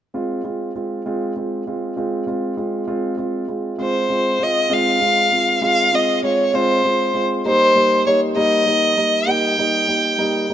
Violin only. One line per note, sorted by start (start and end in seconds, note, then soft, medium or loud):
3.82 4.45 C5 medium
4.43 4.75 D#5 medium
4.73 5.63 F5 medium
5.64 5.96 F5 medium
5.95 6.24 D#5 medium
6.25 6.56 C#5 medium
6.55 7.23 C5 medium
7.47 8.03 C5 medium
8.06 8.20 C#5 medium
8.37 9.30 D#5 medium
9.28 10.54 G5 medium